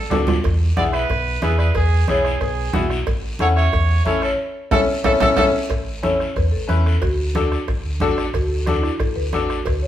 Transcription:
Already playing: A4 D5
0.10 D2 D4 F#4 A4, bombo rim, low conga, low timbale, short guiro
0.27 bombo rim, low conga, low timbale, short guiro
0.43 E2, bombo low, bombo rim, cowbell, high conga, long guiro
0.76 B1 B3 E4 G#4 D5 F#5, bombo rim, high conga, short guiro
0.93 B4 E5, bombo rim, short guiro
1.10 B1, bombo low, bombo rim, cowbell, high conga, long guiro
1.42 E2 B3 E4 G#4 B4 E5, bombo rim, high conga, short guiro
1.59 B4 D5, bombo rim, short guiro
1.74 E2 G#4 B4, bombo low, bombo rim, cowbell, high conga, long guiro
2.08 B1 B3 E4 G#4 C#5, bombo rim, high conga, short guiro
2.25 bombo rim, short guiro
2.40 B1 G#4 B4, bombo low, bombo rim, cowbell, high conga, long guiro
2.73 B1 B3 E4 F#4, bombo rim, high conga, low conga, short guiro
2.90 bombo rim, short guiro
3.06 A1, bombo low, bombo rim, cowbell, high conga, long guiro
3.39 E2 C#4 E4 A4 C#5 F#5, bombo rim, high conga, short guiro
3.56 C#5 E5, bombo rim, short guiro
3.72 E2, bombo low, bombo rim, cowbell, high conga, long guiro
4.05 A1 C#4 E4 A4 C#5 E5, bombo rim, high conga, short guiro
4.22 A4 C#5, bombo rim, short guiro
4.71 A1 C#4 E4 A4 C#5 E5, bombo low, low conga, high timbale, long guiro
5.04 A1 C#4 E4 A4 C#5 E5, bombo low, low conga, high timbale
5.20 A1 C#4 E4 A4 C#5 E5, bombo low, low conga, high timbale, long guiro
5.37 A1 C#4 E4 A4 C#5 E5, bombo low, low conga, high timbale, long guiro
5.70 A1, bombo low, bombo rim, cowbell, high conga, long guiro
6.03 C#4 E4 A4 C#5, bombo rim, high conga, short guiro
6.20 bombo rim, short guiro
6.36 E2 B4, bombo low, bombo rim, cowbell, high conga, long guiro
6.52 A1 A4
6.68 E2 C#4 E4 B4, bombo rim, high conga, short guiro
6.86 A4, bombo rim, short guiro
7.02 D2 F#4, bombo low, bombo rim, cowbell, high conga, long guiro
7.35 D4 F#4 A4, bombo rim, high conga, short guiro
7.52 bombo rim, short guiro
7.68 A1, bombo low, bombo rim, cowbell, high conga, long guiro
7.84 D2
8.00 A1 D4 F#4 A4, bombo low, bombo rim, high conga, low conga, short guiro
8.18 bombo rim, short guiro
8.33 D2 F#4, bombo low, bombo rim, cowbell, high conga, long guiro
8.48 A4
8.65 D4 F#4 A4, bombo rim, high conga, short guiro
8.81 E4, bombo rim, short guiro
9.00 A1 A4, bombo low, bombo rim, cowbell, high conga, long guiro
9.16 D2 B4
9.33 A1 D4 F#4 A4, bombo rim, high conga, short guiro
9.49 F#4, bombo rim, short guiro
9.65 D2 B4, bombo low, bombo rim, cowbell, high conga, long guiro
9.82 C#5

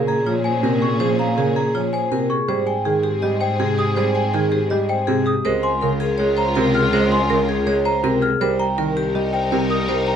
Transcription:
Already playing: A#2 C#3 C#4 G#4 A#4
0.07 G#4 A#5
0.26 F3 F4 C#5
0.44 C5 G#5
0.63 C3 C4 A#4
0.82 G#4 C#6
1.00 F3 G#4 C5
1.19 F5 A#5
1.37 C#3 G#4 A#4
1.56 G#4 A#5
1.75 F3 F4 C#5
1.93 C5 G#5
2.12 C3 C4 A#4
2.30 G#4 C#6
2.48 G#2 G3 C4 G#4 C5
2.67 G5 G#5
2.85 D#3 G#4
3.03 G4
3.22 G3 G4 D#5
3.41 C5 G5
3.59 C3 C4 G#4
3.78 G4 D#6
3.96 G3 G#4 C5
4.15 G5 G#5
4.34 D#3 G#4
4.52 G4
4.70 G3 G4 D#5
4.89 C5 G5
5.07 C3 C4 G#4
5.26 G4 D#6
5.45 C#2 G#3 F4 A#4 C5
5.63 G#5 C6
5.81 C#3 A#4
6.00 G#4
6.18 G#3 G#4 C#5
6.37 C5 A#5
6.55 C3 C4 A#4
6.74 G#4 F6
6.93 G#3 A#4 C5
7.12 G#5 C6
7.30 C#3 A#4
7.49 G#4
7.67 G#3 G#4 C#5
7.85 C5 A#5
8.03 C3 C4 A#4
8.22 G#4 F6
8.41 C2 G3 D#4 A#4 C5
8.59 G5 A#5
8.78 D#3 A#4
8.97 G4
9.15 G3 G4 D#5
9.33 C5 G5
9.52 C3 C4 A#4
9.70 G4 D#6
9.89 G3 A#4 C5
10.07 G5 A#5

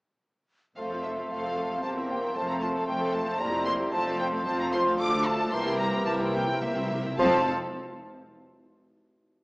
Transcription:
0.76 F1 F2 A3 C4 F4 A4 C5 F5
0.90 C4 F4 A4 F5
1.03 A3 F4 A4 C5 E5
1.17 C4 F4 A4 F5
1.30 F1 F2 A3 F4 A4 C5 F5
1.43 C4 F4 A4 F5
1.56 A3 F4 A4 C5
1.69 C4 F4 A4 F5
1.82 E1 E2 A#3 G4 A#4 C5 A5
1.96 C4 E4 A#4 E5
2.09 A#3 G4 C5 G5
2.22 C4 E4 A#4 E5
2.35 F1 F2 A3 F4 A4 C5 A5
2.47 C4 A4 F5 A#5
2.60 A3 F4 C5 A5
2.74 C4 A4 F5
2.86 F1 F2 A3 F4 C5 G5
3.00 C4 A4 F5
3.13 A3 F4 C5 A5
3.26 C4 A4 F5
3.39 F1 F2 G3 A#3 E4 A#4 C5 A#5
3.53 C4 G4 A#4
3.66 A#3 E4 A#4 C5 C6
3.79 C4 G4 A#4
3.92 F1 F2 F3 C4 F4 C5 A5
4.06 A3 C4 A4 F5
4.18 C4 F4 C5 G5
4.33 A3 C4 A4 F5
4.45 F1 F2 C4 F4 C5 A5
4.59 A3 C4 A4 F5 A#5
4.72 C4 F4 C5 C6
4.85 A3 C4 A4 F5
4.99 D2 F3 A3 F4 A4 D5 D6
5.12 A3 D4 A4 F5
5.25 F3 F4 D5 A5
5.38 A3 D4 A4 F5
5.52 C2 C3 E3 A#3 E4 G4 A#4 C5 E5 C6
5.65 C3 C4 E4 A#4 G5
5.75 C3 C5 A#5
5.79 C3 A#3 G4 E5 A#5
5.91 C3 C4 E4 A#4 G5
5.98 C3
6.05 C2 C3 A#3 G4 C5 E5 A5
6.13 C3
6.20 C3 C4 E4 A#4 G5
6.29 C3
6.34 C3 A#3 G4 C5 E5 G5
6.44 C3 G5
6.48 C3 C4 E4 A#4
6.59 C2 C3 A#3 G4 C5 E5
6.67 C3
6.75 C3 C4 E4 A#4 G5
6.83 C3
6.90 C3 A#3 G4 C5 E5
6.99 C3
7.04 C3 C4 E4 A#4 G5
7.18 F1 F2 F3 C4 F4 A4 C5 F5 A5

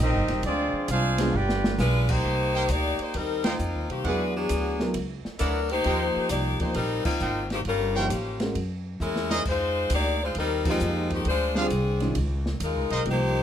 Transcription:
Already playing: A#1
0.00 G3 A#3 C4 D#4 G4 A#4 D#5
0.13 G1
0.28 D#1, snare, ride
0.43 D2 F3 G#3 C4 D4 F4 G#4 D5, ride
0.73 muted upright bass stroke
0.88 C2 G#3 C4 D4 F4 G#4 C5 F5, hi-hat pedal, ride
1.18 G#3 B3 D4 F4, snare, ride
1.33 G1 B3 D4 F4 G4 B4 D5 G5
1.49 snare
1.64 snare
1.78 B1 G#3 D4 F4 B4, snare, hi-hat pedal
2.09 A#3 D#4 G4 C5, kick, crash
2.24 C2
2.54 D#4 A#4 C5 G5
2.68 D2 A#3 D#4 G4 D5, hi-hat pedal, ride
2.99 A#3 D#4 G4 C5, muted upright bass stroke, ride
3.14 D#2 G3 C4 D#4 A#4, ride
3.44 A#3 C4 D#4 F4 A#4 C5 G5, snare, ride
3.59 F2, hi-hat pedal
3.74 D#2
3.89 C2 D#3 A#3 C4 G4, ride
4.04 E2 F#3 G#3 B3 D4 E4 F#4 G#4 B4 D5 F#5, ride
4.36 F#3 B3 D4 G#4
4.49 D2, hi-hat pedal, ride
4.80 F#3 B3 E4 A#4, snare
4.94 C#2, ride
5.25 muted upright bass stroke, snare
5.39 D2 F#3 B3 D4 E4 G#4 A#4 D5 F#5, hi-hat pedal, ride
5.69 A#3 D#4 G4 C5, ride
5.84 D#2 F3 A#3 D#4 G4 A#4 C5 G5, ride
6.16 muted upright bass stroke
6.29 C2 A#3 D#4 G4 D5, hi-hat pedal, ride
6.60 F3 A#3 D#4 G4 C5, muted upright bass stroke, kick, ride
6.74 A#1 G3 C4 D#4 A#4, ride
7.05 A#3 C4 D#4 F4, muted upright bass stroke, kick, crash
7.20 G#1 D#4 A#4 C5 G5, hi-hat pedal
7.50 D#3 A#3 C4 G4, snare, ride
7.65 G1 G3 C#4 F4 A#4, ride
7.95 F3 A#3 C#4 D#4 F4 G4 A#4 C#5 G5
8.10 A1, hi-hat pedal, ride
8.40 G#3 C#4 F#4 A#4, snare, ride
8.55 F#2, ride
9.00 E2 G#3 C#4 E4 A#4, hi-hat pedal
9.16 snare
9.29 D#4 G#4 C5 D#5, snare
9.45 F2 F4 C5, kick, crash
9.49 G#3 D#4
9.90 D2, hi-hat pedal, ride
9.94 A#3 D#4 G4 D5
10.24 G#3 D#4 F4 C5
10.35 D#2, ride
10.39 G3 C4 D#4 A#4
10.65 F3 A#3 D#4 G4, kick, crash
10.69 G#3 C4 D#4 F4
10.80 F2, hi-hat pedal
11.10 D#3 G#3 C4 G4, kick, ride
11.25 D2 G#3 D4 F4 C5, ride
11.55 D3 G3 C4 D4 F4 G#4 C5 F5, snare
11.59 F3 D4
11.70 C2, hi-hat pedal, ride
12.00 D#3 G#3 C#4 F4, snare, ride
12.15 C#2, ride
12.46 snare
12.60 D#2 A#4, hi-hat pedal, ride
12.64 G#3 D#4 F4
12.76 C#2
12.90 B1 D#4 A#4 C5 D#5, ride
13.05 C2 F3 A#3 D#4 G4, ride
13.10 A#3 D#4 G4 C5

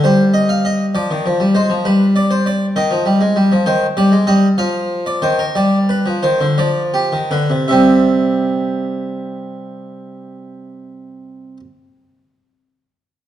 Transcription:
0.04 G3 C5
0.34 D#5
0.49 F5
0.65 D#5
0.95 F3 D5
1.11 D#3
1.26 F3
1.40 G3
1.55 G#3 C5
1.70 F3
1.85 G3 B4
2.16 D5
2.31 C5
2.46 D5
2.76 D#3 D#5
2.91 F3
3.06 G3
3.21 G#3
3.36 G3
3.52 F3
3.66 D#3 C5
3.97 G3 D5
4.12 G#3
4.27 G3 D#5
4.58 F3 F5
5.06 D5
5.22 D#3 C5
5.39 A#4
5.55 G3 D5
5.89 B4
6.06 F3
6.23 D#3 C5
6.41 D3
6.58 F3 D5
6.94 G4
7.12 D#3
7.31 D3 B4
7.50 C3
7.68 C3 G3 C4 E5

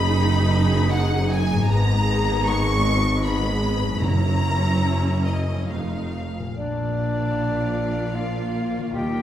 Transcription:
Already playing: F#1 F#2 B3 D#4 F#4 G#4 B5
0.91 F#5
1.30 G#5
1.51 G#2
1.55 B3
1.60 D#4
1.64 G#2 B3 G#4 A#5
1.69 G#1 A#5
2.47 C#6
3.24 B3 G#4 B5
3.83 F#2
3.88 A#3
3.92 E4
3.97 A#4
4.01 F#1 F#2 C#4 E4 A#5
5.26 D#5
5.53 F2
5.57 C4
5.61 D#4
5.66 A4 F5
5.70 F1 F2 A3 D#4 F5
6.39 A#2
6.43 A#3
6.48 F4
6.52 D4 A#4
6.56 A#1 A#2 F3 A#3 F4 D5 F5
8.15 F4 F5
8.78 D#3
8.82 A#3
8.86 F4
8.91 G3 G4 G5
8.95 D#2 D#3 D#5 G5

